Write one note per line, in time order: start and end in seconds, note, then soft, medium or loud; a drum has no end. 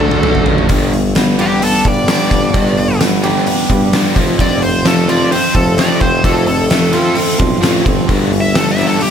0.00 0.15 D3 loud
0.00 0.21 D3 medium
0.00 0.22 A3 medium
0.00 0.23 D4 medium
0.00 0.25 F#4 medium
0.00 0.43 A4 medium
0.00 0.43 A5 medium
0.00 mid tom medium
0.11 mid tom medium
0.22 0.44 B1 medium
0.22 0.68 D3 medium
0.22 0.48 A3 loud
0.22 0.47 D4 medium
0.22 0.45 F#4 medium
0.22 mid tom loud
0.35 floor tom medium
0.46 0.67 A1 medium
0.46 0.70 A3 medium
0.46 0.69 D4 medium
0.46 0.68 F#4 medium
0.46 floor tom loud
0.58 floor tom medium
0.69 1.43 G1 medium
0.69 1.85 G2 medium
0.69 0.91 G3 medium
0.69 0.92 B3 medium
0.69 0.92 D4 medium
0.69 kick medium
0.69 open hi-hat medium
0.93 1.13 G3 medium
0.93 1.14 B3 medium
0.93 open hi-hat medium
1.16 1.37 G3 medium
1.16 1.37 B3 medium
1.16 snare loud
1.16 open hi-hat medium
1.39 1.60 G3 medium
1.39 1.61 B3 medium
1.39 1.61 D4 medium
1.39 2.54 G4 medium
1.39 1.62 G4 loud
1.39 open hi-hat medium
1.61 1.82 G3 medium
1.61 1.83 B3 medium
1.61 2.31 D4 medium
1.61 1.85 A4 medium
1.61 open hi-hat medium
1.85 2.23 G1 medium
1.85 2.06 G3 medium
1.85 2.06 B3 medium
1.85 2.09 D5 medium
1.85 kick medium
1.85 open hi-hat soft
2.08 2.29 G3 medium
2.08 2.30 B3 medium
2.08 2.31 D4 medium
2.08 2.99 D5 medium
2.08 snare loud
2.08 open hi-hat medium
2.30 2.50 G1 medium
2.30 2.52 G3 medium
2.30 2.52 B3 medium
2.30 3.46 D4 medium
2.30 kick medium
2.30 open hi-hat soft
2.53 3.49 G1 medium
2.53 3.70 G2 medium
2.53 2.76 G3 medium
2.53 2.76 B3 medium
2.53 2.76 D4 medium
2.53 kick medium
2.53 open hi-hat medium
2.77 2.99 G3 medium
2.77 2.99 B3 medium
2.77 open hi-hat soft
3.00 3.21 G3 medium
3.00 3.22 B3 medium
3.00 snare medium
3.00 open hi-hat medium
3.23 3.44 G3 medium
3.23 3.44 B3 medium
3.23 3.46 D4 medium
3.23 4.16 G4 medium
3.23 open hi-hat soft
3.45 3.67 G3 medium
3.45 3.67 B3 medium
3.45 4.16 D4 medium
3.45 open hi-hat medium
3.69 4.08 G2 medium
3.69 3.90 G3 medium
3.69 3.91 B3 medium
3.69 kick medium
3.69 open hi-hat medium
3.92 4.14 G3 medium
3.92 4.15 B3 medium
3.92 4.15 D4 medium
3.92 snare loud
3.92 open hi-hat medium
4.15 4.35 F1 medium
4.15 4.40 F2 medium
4.15 4.37 F3 medium
4.15 4.38 C4 medium
4.15 4.38 F4 loud
4.15 kick medium
4.15 open hi-hat medium
4.39 5.34 F1 loud
4.39 5.55 F2 medium
4.39 4.60 F3 medium
4.39 4.60 C4 medium
4.39 4.61 F4 medium
4.39 4.63 D5 medium
4.39 kick medium
4.39 open hi-hat medium
4.61 4.82 F3 medium
4.61 4.83 C4 medium
4.61 4.85 C5 medium
4.61 open hi-hat soft
4.85 5.06 F3 medium
4.85 5.77 A3 medium
4.85 5.06 C4 medium
4.85 5.09 A4 medium
4.85 snare medium
4.85 open hi-hat medium
5.08 5.30 F3 medium
5.08 5.30 C4 medium
5.08 5.31 F4 medium
5.08 5.31 D5 medium
5.08 open hi-hat medium
5.31 5.52 F3 medium
5.31 5.52 C4 medium
5.31 5.54 C5 medium
5.31 open hi-hat medium
5.54 5.93 F1 medium
5.54 5.75 F3 medium
5.54 5.76 C4 medium
5.54 5.77 A4 medium
5.54 kick medium
5.54 open hi-hat medium
5.77 5.99 F3 medium
5.77 6.69 A3 medium
5.77 5.99 C4 medium
5.77 6.00 F4 medium
5.77 6.01 D5 loud
5.77 snare loud
5.77 open hi-hat medium
6.00 6.20 F1 medium
6.00 6.21 F3 medium
6.00 6.22 C4 medium
6.00 6.23 C5 medium
6.00 kick medium
6.00 open hi-hat soft
6.24 6.97 F1 loud
6.24 7.40 F2 medium
6.24 6.46 F3 medium
6.24 6.46 C4 medium
6.24 6.46 F4 medium
6.24 6.46 A4 medium
6.24 kick medium
6.24 open hi-hat medium
6.47 6.68 F3 medium
6.47 6.68 C4 medium
6.47 7.37 A4 loud
6.47 open hi-hat soft
6.70 6.91 F3 medium
6.70 7.61 A3 medium
6.70 6.92 C4 medium
6.70 snare loud
6.70 open hi-hat medium
6.92 7.14 F3 medium
6.92 7.15 C4 medium
6.92 7.15 F4 medium
6.92 open hi-hat soft
7.16 7.37 F3 medium
7.16 7.37 C4 medium
7.16 open hi-hat medium
7.38 7.61 B1 medium
7.38 7.60 F3 medium
7.38 7.60 C4 medium
7.38 kick medium
7.38 open hi-hat soft
7.61 7.84 A1 medium
7.61 7.83 F3 medium
7.61 8.09 A3 medium
7.61 7.84 C4 loud
7.61 7.84 F4 medium
7.61 snare loud
7.61 open hi-hat medium
7.85 8.06 G1 medium
7.85 8.06 F3 medium
7.85 8.06 C4 medium
7.85 kick medium
7.85 open hi-hat medium
8.08 9.04 G1 loud
8.08 8.30 G3 medium
8.08 8.30 B3 medium
8.08 8.31 D4 medium
8.08 kick medium
8.08 open hi-hat medium
8.31 8.52 G3 medium
8.31 8.52 B3 medium
8.31 open hi-hat soft
8.41 8.55 E5 loud
8.55 8.75 G3 medium
8.55 8.76 B3 medium
8.55 8.70 A4 loud
8.55 snare loud
8.55 open hi-hat medium
8.71 8.86 E5 medium
8.78 8.99 G3 medium
8.78 8.99 B3 medium
8.78 9.00 D4 medium
8.78 open hi-hat medium
8.87 9.01 A4 loud
9.00 9.11 G3 medium
9.00 9.11 B3 medium
9.00 9.11 G4 loud
9.00 open hi-hat medium